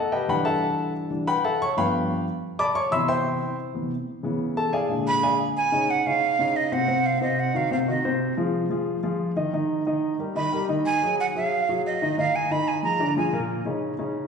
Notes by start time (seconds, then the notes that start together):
Already playing: A4 D#5 F#5 A5
0.12 G4 B4 D#5 G5
0.28 E3 G3 D4 B4 F#5 G5 B5
0.45 A4 E5 F#5 A5
1.10 E3 G3 D4
1.27 B4 F#5 G5 B5
1.44 A4 E5 F#5 A5
1.62 C#5 C#6
1.76 G2 F3 B3 B4 F5 G5 B5
2.59 D5 A5 B5 D6
2.75 C#5 C#6
2.91 B2 C3 E3 E5 B5 C6 E6
3.08 C5 E5 G5 C6
3.74 C3 E3 B3
4.23 C#3 E3 B3
4.57 A4 A5
4.73 G#4 D5 F5 G#5
4.89 A#2 D3 G#3
5.08 B5
5.23 G#4 D5 F5 G#5
5.57 G#5
5.72 C#3 C#4 D#4
5.90 F#5
6.07 C#3 C#4 D#4 F5
6.39 C#3 C#4 D#4
6.56 D#5
6.72 C3 C4 C5 F#5
6.88 C3 C4 C5
7.06 F5
7.21 C3 C4 C5 D#5
7.39 F#5
7.54 D#3 D#4 F#4 F5
7.71 C3 C4 C5 F5
7.88 D#3 D#4 F#4 D#5
8.05 C3 C4 C5
8.37 F3 F4 G#4
8.70 F3 F4 G#4
9.03 F3 F4 G#4
9.36 D#3 D#4 D#5
9.53 D#3 D#4 D#5
9.87 D#3 D#4 D#5
10.19 G3 G4 A#4
10.35 D#3 D#4 D#5 B5
10.52 G3 G4 A#4
10.69 D#3 D#4 D#5
10.86 G#5
11.02 F#3 F#4 G#4
11.20 F#5
11.35 F#3 F#4 G#4 F5
11.69 F#3 F#4 G#4
11.86 D#5
12.02 D#3 D#4 D#5
12.18 D#3 D#4 D#5 F5
12.36 G#5
12.51 D#3 D#4 D#5 B5
12.68 G#5
12.83 F3 F4 G#4 A#5
13.00 D3 D4 D5
13.17 F3 F4 G#4 G#5
13.33 A#2 A#3 A#4
13.65 C#3 C#4 D#4
13.99 C#3 C#4 D#4